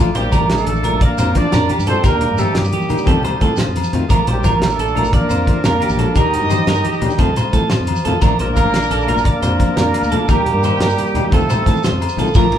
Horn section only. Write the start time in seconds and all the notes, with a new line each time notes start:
0.16 G3 A#3 G4
0.52 A3 D4 A4
1.02 A#3 D4 A#4
1.36 D4 F4 D5
1.86 C4 D#4 C5
2.05 A#3 D4 A#4
2.38 A3 C4 A4
2.56 G3 A#3 G4
4.29 G3 A#3 G4
4.55 A#3 A#4
4.61 A3 D4 A4
5.14 A#3 D4 A#4
5.66 A#3 D4 A#4
6.16 D#4 G4 D#5
8.40 A#3 D4 A#4
9.27 A#3 D4 A#4
10.28 G3 A#3 G4
11.30 A3 C4 A4